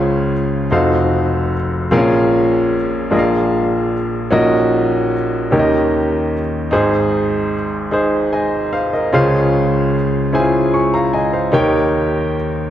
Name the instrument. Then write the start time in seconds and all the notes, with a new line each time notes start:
grand piano
Already playing: C#2 C#3 C#4 F4 G#4 C5 F5
0.71 F1 F2 D#4 F#4 A4 C5 F5
1.91 A#1 A#2 C4 F4 G#4 A#4 F5
1.97 C#4
3.11 A#1 A#2 D4 F4 G#4 A#4 D#5
3.19 F5
4.30 A#1 A#2 C#4 D#4 F#4 A#4 D#5
5.51 D#2 D#3 C#4 D#4 G4 A#4 C#5
5.59 D#5
6.71 G#1 G#2 D#4 G#4 C5
7.91 D#4 G#4 C5
8.33 D#5 G#5
8.73 C5 F5
8.93 A#4 D#5
9.13 C#2 C#3 C#4 F4 G#4 C5 F5
10.33 C#4 E4 G#4 C5 G#5
10.40 F4
10.74 G#5 C#6
10.94 F5 A#5
11.13 D#5 G#5
11.33 C5 F5
11.52 D#2 D#3 D#4 G4 A#4 C#5 G5